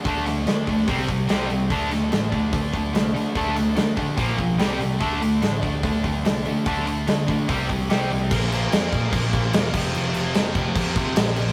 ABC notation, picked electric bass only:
X:1
M:4/4
L:1/8
Q:1/4=146
K:Dm
V:1 name="Picked electric bass" clef=bass
D,,2 D, D,, C,, C,, C,, C,, | D,,2 A,,, D,, D,, D,, C,, D, | D,,2 D, D, B,,, =B,,, C,, C,, | D,,2 A,,, D,, D,, D,, C,, D, |
D,,2 D, D, C,, C,, C,, C,, | B,,,2 F,, B,,, B,,, B,,, E,,, F,,, | F,,, F,,, F,,, F,,, F,, F,,, B,,,2 |]